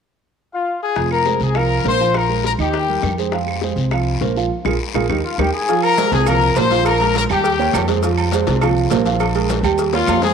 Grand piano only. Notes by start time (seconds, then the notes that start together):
0.96 F3 F4 F5
1.25 G#3 G#4 C5
1.55 F3 F4 F5
1.85 A#3 A#4 C5
2.00 F3 F4 F5
2.29 G#3 G#4 A#4
2.59 D#3 D#4 D#5
2.89 G3 G4 A#4
3.19 G#3 G#4 C5
3.34 F3 F4 F5
3.63 G#3 G#4 C5
3.93 F3 F4 F5
4.22 A#3 A#4 C5
4.37 F3 F4 F5
4.66 F4 G#4 A#4
4.95 F4 G#4 A#4
5.09 D#4 G4 A#4
5.39 D#4 G4 A#4
5.69 F3 F4 F5
5.98 G#3 G#4 C5
6.27 F3 F4 F5
6.56 A#3 A#4 C5
6.71 F3 F4 F5
7.00 G#3 G#4 A#4
7.30 G3 G4 G5
7.59 A#3 A#4 C#5
7.88 G#3 G#4 C5
8.04 F3 F4 F5
8.33 G#3 G#4 C5
8.62 F3 F4 F5
8.91 A#3 A#4 C5
9.06 F3 F4 F5
9.35 G#3 G#4 A#4
9.64 G3 G4 G5
9.93 A#3 A#4 C#5
10.22 G#3 G#4 C5